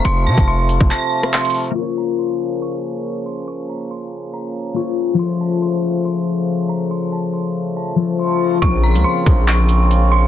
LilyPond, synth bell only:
\new Staff \with { instrumentName = "Synth bell" } { \time 4/4 \key bes \minor \tempo 4 = 140 c'''8 a''8 c'''4 a''4 c'''8 r8 | des'''8 bes''8 c'''4 des'''4. c'''8 | des'''8 bes''8 c'''4 bes''4 des'''8 r8 | c'''8 a''8 c'''4 c'''4. bes''8 |
c'''8 a''8 c'''4 a''4 c'''8 r8 | des'''8 bes''8 c'''4 des'''4. c'''8 | }